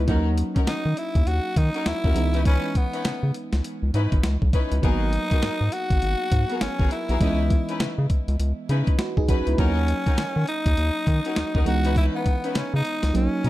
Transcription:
0.07 analog synth bass D#2, fm electric piano F#3 A#3 C#4 D#4, string section C#4 D#4 F#4 A#4, kick, closed hi-hat
0.38 closed hi-hat
0.56 string section C#4 D#4 F#4 A#4, kick, closed hi-hat
0.67 analog synth bass D#3, tenor saxophone D#4, snare, closed hi-hat
0.85 analog synth bass D#3
0.97 tenor saxophone E4, closed hi-hat
1.15 analog synth bass D#2, kick, closed hi-hat
1.27 analog synth bass D#2, tenor saxophone F#4, closed hi-hat
1.56 analog synth bass D#3, tenor saxophone D#4, kick, closed hi-hat
1.74 string section C#4 D#4 F#4 A#4, closed hi-hat
1.86 analog synth bass D#2, tenor saxophone E4, snare, closed hi-hat
2.04 analog synth bass D#2, string section C#4 D#4 F#4 A#4, kick
2.14 analog synth bass C#2, fm electric piano E3 G#3 B3 D#4, closed hi-hat
2.34 string section C#4 D#4 E4 B4, closed hi-hat
2.45 string section C#4 D#4 E4 B4, tenor saxophone C#4, kick, closed hi-hat
2.75 tenor saxophone B3, kick, closed hi-hat
2.93 string section C#4 D#4 E4 B4, closed hi-hat
3.05 analog synth bass C#3, snare, closed hi-hat
3.23 analog synth bass C#3
3.34 closed hi-hat
3.53 analog synth bass C#2, snare, closed hi-hat
3.64 closed hi-hat
3.83 analog synth bass C#2
3.94 analog synth bass G#2, string section C#4 D#4 E4 B4, closed hi-hat
4.12 analog synth bass G#1, kick, closed hi-hat
4.23 analog synth bass C#2, snare, closed hi-hat
4.42 analog synth bass B1, kick
4.53 string section C#4 D#4 E4 B4, kick, closed hi-hat
4.72 analog synth bass C#2, closed hi-hat
4.82 analog synth bass G#1, fm electric piano F#3 A#3 B3 D#4, string section B3 F#4 G#4 A#4, tenor saxophone D#4, kick, closed hi-hat
5.13 closed hi-hat
5.31 string section B3 F#4 G#4 A#4, kick, closed hi-hat
5.42 analog synth bass G#2, snare, closed hi-hat
5.61 analog synth bass G#2
5.72 tenor saxophone F#4, closed hi-hat
5.90 analog synth bass G#1, kick, closed hi-hat
6.02 analog synth bass G#1, closed hi-hat
6.32 analog synth bass G#2, kick, closed hi-hat
6.50 string section B3 F#4 G#4 A#4, closed hi-hat
6.61 analog synth bass G#1, tenor saxophone C#4, snare, closed hi-hat
6.79 analog synth bass G#1, string section B3 F#4 G#4 A#4, kick
6.91 tenor saxophone E4, closed hi-hat
7.09 analog synth bass B1, string section B3 F#4 G#4 A#4, closed hi-hat
7.20 analog synth bass C#2, fm electric piano E3 G#3 B3 D#5, string section C#4 D#4 E4 B4, kick, closed hi-hat
7.50 kick, closed hi-hat
7.68 string section C#4 D#4 E4 B4, closed hi-hat
7.80 analog synth bass C#3, snare, closed hi-hat
7.98 analog synth bass C#3
8.10 kick, closed hi-hat
8.28 analog synth bass C#2, closed hi-hat
8.39 analog synth bass C#2, closed hi-hat
8.69 analog synth bass C#3, string section C#4 D#4 E4 B4, closed hi-hat
8.87 kick, closed hi-hat
8.99 fm electric piano F#4 B4, snare, closed hi-hat
9.17 analog synth bass C#2, fm electric piano D#4 G#4, kick
9.28 analog synth bass B1, string section C#4 D#4 E4 B4, fm electric piano C#4 F#4, kick, closed hi-hat
9.47 analog synth bass C#2, fm electric piano B3 E4, closed hi-hat
9.57 analog synth bass D#2, fm electric piano F#3 A#3 C#4 D#4, string section C#4 D#4 F#4 A#4, tenor saxophone C#4, kick, closed hi-hat
9.88 closed hi-hat
10.06 string section C#4 D#4 F#4 A#4, kick, closed hi-hat
10.18 analog synth bass D#3, snare, closed hi-hat
10.36 analog synth bass D#3
10.47 tenor saxophone D#4, closed hi-hat
10.66 analog synth bass D#2, kick, closed hi-hat
10.77 analog synth bass D#2, closed hi-hat
11.07 analog synth bass D#3, kick, closed hi-hat
11.25 string section C#4 D#4 F#4 A#4, closed hi-hat
11.36 analog synth bass D#2, snare, closed hi-hat
11.55 analog synth bass D#2, string section C#4 D#4 F#4 A#4, kick
11.65 analog synth bass C#2, fm electric piano E3 G#3 B3 D#4, tenor saxophone F#4, closed hi-hat
11.84 string section C#4 D#4 E4 B4, closed hi-hat
11.96 string section C#4 D#4 E4 B4, tenor saxophone E4, kick, closed hi-hat
12.16 tenor saxophone B3
12.26 kick, closed hi-hat
12.44 string section C#4 D#4 E4 B4, closed hi-hat
12.55 analog synth bass C#3, tenor saxophone C#4, snare, closed hi-hat
12.74 analog synth bass C#3, tenor saxophone D#4
12.85 closed hi-hat
13.03 analog synth bass C#2, snare, closed hi-hat
13.13 analog synth bass B1, fm electric piano F#3 A#3 C#4 D#4, tenor saxophone C#4, closed hi-hat
13.44 analog synth bass B2, string section B3 C#4 D#4 A#4, closed hi-hat

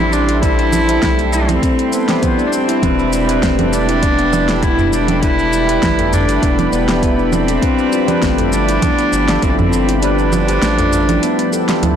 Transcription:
Already playing: analog synth bass A1, tine electric piano G3 C4 E4 G4 A4, cello E4, analog synth pad E4 A4 G5 C6
0.00 handpan D4
0.13 cello D4, shaker
0.28 handpan E4, closed hi-hat, shaker
0.42 tine electric piano G3 C4 E4 A4, handpan D4, cello E4, kick, closed hi-hat, shaker
0.59 closed hi-hat, shaker
0.72 handpan E4, low conga, shaker
0.87 tine electric piano G3 C4 E4 A4, closed hi-hat, shaker
1.03 analog synth bass B1, handpan A3, kick, snare, closed hi-hat, shaker
1.18 handpan A4, closed hi-hat, shaker
1.33 cello C4, shaker
1.48 handpan E4, closed hi-hat, low conga, shaker
1.62 handpan C4, kick, closed hi-hat, shaker
1.78 handpan C4, closed hi-hat, shaker
1.92 cello B3, handpan C4, shaker
2.08 tine electric piano G3 C4 E4 G4, snare, closed hi-hat, shaker
2.22 handpan C5, kick, closed hi-hat, low conga, shaker
2.38 handpan D4, shaker
2.46 cello D4
2.52 cello C4, shaker
2.68 handpan E4, closed hi-hat, shaker
2.82 analog synth bass E1, tine electric piano G3 D4 E4 B4, handpan D4, analog synth pad D5 B5, kick, closed hi-hat, low conga, shaker
2.99 shaker
3.12 handpan E4, shaker
3.27 tine electric piano G3 D4 E4 B4, closed hi-hat, shaker
3.42 handpan A3, kick, snare, closed hi-hat, shaker
3.58 handpan A4, closed hi-hat, udu, low conga, shaker
3.73 cello D4, shaker
3.88 handpan E4, closed hi-hat, shaker
4.03 handpan B3, kick, closed hi-hat, shaker
4.19 handpan B3, closed hi-hat, shaker
4.33 handpan D5, low conga, shaker
4.48 tine electric piano G3 D4 E4 A4, snare, closed hi-hat, shaker
4.63 handpan E4, cello E4, kick, closed hi-hat, shaker
4.79 handpan D4, udu, shaker
4.86 cello E4
4.93 cello D4, shaker
5.08 handpan E4, closed hi-hat, low conga, shaker
5.21 tine electric piano G3 D4 E4 B4, handpan D4, cello E4, kick, closed hi-hat, shaker
5.39 shaker
5.53 handpan E4, shaker
5.67 tine electric piano G3 D4 E4, closed hi-hat, shaker
5.71 tine electric piano B4
5.82 analog synth bass G1, handpan A3, kick, snare, closed hi-hat, low conga, shaker
5.99 handpan A4, closed hi-hat, udu, shaker
6.13 cello D4, udu, shaker
6.28 handpan E4, closed hi-hat, shaker
6.42 analog synth bass E1, handpan B3, kick, closed hi-hat, shaker
6.58 handpan B3, closed hi-hat, low conga, shaker
6.72 analog synth bass E1, cello B3, handpan D5, shaker
6.87 tine electric piano G3 D4 E4 A4, snare, closed hi-hat, shaker
7.02 handpan E4, kick, closed hi-hat, shaker
7.18 handpan D4, shaker
7.32 cello C4, low conga, shaker
7.48 handpan E4, closed hi-hat, shaker
7.62 analog synth pad F3, tine electric piano G3 D4 F4 B4, handpan D4, kick, closed hi-hat, shaker
7.79 shaker
7.92 handpan F4, shaker
8.06 tine electric piano F3 G3 D4, closed hi-hat, low conga, shaker
8.10 tine electric piano B4
8.22 analog synth bass G1, handpan A3, kick, snare, closed hi-hat, shaker
8.38 handpan A4, closed hi-hat, udu, shaker
8.52 cello D4, shaker
8.68 handpan E4, closed hi-hat, shaker
8.82 handpan B3, kick, closed hi-hat, low conga, shaker
8.98 handpan B3, closed hi-hat, shaker
9.12 analog synth bass G1, handpan D5, shaker
9.28 tine electric piano G3 D4 F4 A4, snare, closed hi-hat, shaker
9.42 analog synth bass G1, cello C4, handpan E4, kick, closed hi-hat, shaker
9.50 cello D4
9.57 cello C4, handpan D4, low conga, udu, shaker
9.73 shaker
9.88 handpan E4, closed hi-hat, shaker
10.02 tine electric piano F3 G3 D4 B4, cello D4, handpan D4, closed hi-hat, shaker
10.19 shaker
10.32 handpan F4, low conga, shaker
10.47 tine electric piano F3 G3 D4 B4, closed hi-hat, shaker
10.62 analog synth bass A1, handpan A3, snare, closed hi-hat, shaker
10.79 handpan A4, closed hi-hat, udu, shaker
10.92 udu, shaker
11.09 handpan E4, closed hi-hat, low conga, shaker
11.23 handpan B3, closed hi-hat, shaker
11.39 handpan B3, closed hi-hat, shaker
11.53 handpan A4, shaker
11.68 tine electric piano G3 D4 F4 A4, snare, closed hi-hat, shaker
11.83 analog synth bass D2, handpan E4, closed hi-hat, low conga, shaker

